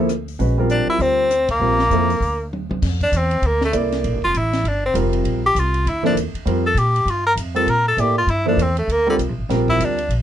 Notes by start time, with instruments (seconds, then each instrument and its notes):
Already playing: upright bass D2
0.09 cross-stick, closed hi-hat
0.28 open hi-hat
0.39 upright bass A#1, grand piano G#3 C#4 F#4 B4, open hi-hat
0.58 grand piano G3 C4 F4 A#4
0.70 tenor saxophone D4, closed hi-hat
0.87 tenor saxophone E4, muted upright bass stroke
0.99 upright bass D2, tenor saxophone C4, open hi-hat
1.31 cross-stick, closed hi-hat
1.49 tenor saxophone A#3, kick, ride
1.60 upright bass A#1, grand piano G3 C4 F4 A#4
1.79 snare
1.90 upright bass F2, grand piano F3 A#3 E4 A4, closed hi-hat
2.10 open hi-hat
2.20 upright bass D2, open hi-hat
2.53 mid tom
2.70 upright bass C2, mid tom
2.82 upright bass F2, kick, snare, crash
3.01 tenor saxophone D4, kick, ride
3.12 upright bass E2, hi-hat pedal, ride
3.17 tenor saxophone C4
3.31 ride
3.42 upright bass D2, ride
3.47 tenor saxophone A#3
3.61 tenor saxophone A3, snare
3.72 upright bass C2, grand piano A#3 E4 A4 D5, hi-hat pedal, ride
3.92 snare, ride
4.04 upright bass A#1, ride
4.13 upright bass G1
4.22 upright bass F1, tenor saxophone F4, kick
4.34 upright bass A1, tenor saxophone E4, hi-hat pedal, ride
4.53 snare, ride
4.64 upright bass G1, tenor saxophone D4, ride
4.86 tenor saxophone C4
4.94 upright bass F1, grand piano G3 C4 F4 A#4, hi-hat pedal, ride
5.13 ride
5.24 upright bass A#1, ride
5.46 tenor saxophone G4
5.55 upright bass C2, hi-hat pedal, ride
5.59 tenor saxophone F4
5.74 ride
5.85 upright bass D2, tenor saxophone E4, ride
6.03 grand piano F3 A#3 E4 A4, tenor saxophone D4, snare
6.15 upright bass E2, hi-hat pedal, ride
6.34 muted upright bass stroke, ride
6.45 upright bass F2, grand piano G3 C4 F4 A#4, ride
6.66 tenor saxophone A4
6.75 upright bass A#2, tenor saxophone G4, hi-hat pedal, ride
6.96 ride
7.06 upright bass G2, ride
7.10 tenor saxophone F4
7.27 tenor saxophone A#4
7.36 upright bass F2, hi-hat pedal, ride
7.55 grand piano G3 C4 F4 A#4, tenor saxophone A4, ride
7.66 upright bass A#2, tenor saxophone A#4, ride
7.88 tenor saxophone A4
7.97 upright bass A2, grand piano A#3 E4 A4 D5, tenor saxophone G4, hi-hat pedal, ride
8.18 tenor saxophone F4
8.27 upright bass G2, tenor saxophone E4, ride
8.46 grand piano F3 A#3 E4 A4, tenor saxophone D4
8.57 upright bass E2, hi-hat pedal, ride
8.62 tenor saxophone C4
8.77 tenor saxophone A3, ride
8.88 upright bass D2, ride
8.92 tenor saxophone A#3
9.07 tenor saxophone D3, grand piano G3 C4 F4 A#4
9.18 upright bass C2, hi-hat pedal, ride
9.29 upright bass A#1
9.39 upright bass A1
9.49 upright bass A#1, grand piano G3 C4 F4 A#4, snare, ride
9.68 tenor saxophone E4, kick
9.79 upright bass D2, hi-hat pedal, ride
9.84 tenor saxophone D4
9.98 ride
10.09 upright bass A#1, ride